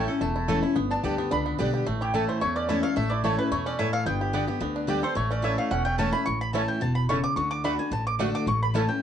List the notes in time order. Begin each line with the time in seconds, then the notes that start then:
Already playing: A2 C#4 E4 G5
0.08 C#4 E4 A4
0.21 E1 E2 A3 A5
0.36 E4
0.48 E3 A3 C#4 E4 A4 C#5 A5
0.63 C#4 E4
0.76 G1 G2 B3
0.91 D4 A5
1.04 D2 D3 G3 B3 G4 D5 G5
1.18 B3 G4
1.31 C#2 D3 D4 B5
1.46 B3
1.58 B1 D3 G3 B3 D4 G4 D5 G5
1.74 G4
1.86 A1 A2 A3
2.01 E4 G4
2.14 E3 A3 C#4 E4 A4 C#5 A5
2.29 E4 C5
2.41 E2 A3 C#5
2.56 C#4 D5
2.69 E3 A3 C#4 E4 C#5 E5 A5
2.83 C#4 E4 A4 F5
2.96 A1 A2 A3 E5
3.10 E4 D5
3.24 E3 A3 C#4 E4 C#5 A5
3.38 C#4 E4 B4
3.51 E2 B2 A3 C#5
3.66 C#4 D5
3.79 A2 A3 E4 C#5 E5 A5
3.93 A4 F5
4.06 G1 G2 B3 G5
4.21 G4
4.33 D3 G3 B3 G4 D5 G5
4.47 B3 G4
4.60 D2 D3 B3
4.76 D4
4.87 D3 G3 B3 G4 D5 G5
5.02 B3 G4 A4 C5
5.15 A1 A2 A3 C#5
5.31 C#4 D5
5.42 E3 A3 C#4 E4 C#5 E5 A5
5.58 A3 F5
5.71 E1 E2 C#4 F#5
5.85 A3 G5
5.98 E3 A3 C#4 E4 C#5 A5
6.13 C#4 E4 B5
6.26 A1 A2 C#6
6.41 B5
6.53 E3 A3 C#4 E4 C#5 A5
6.68 G5
6.81 E1 B2 A5
6.95 B5
7.09 C#3 A3 C#4 E4 C#5 A5 C#6
7.24 D6
7.36 D2 D3 C#6
7.51 D6
7.64 D3 A3 D4 F#4 D5 F#5 B5
7.79 D4 F#4 G#5
7.91 A1 A2 A5
8.07 D6
8.19 D3 A3 D4 F#4 D5 F#5
8.35 D6
8.46 A1 A2 C#6
8.63 B5
8.74 E3 A3 C#4 E4 C#5 A5
8.89 C#4 E4 G5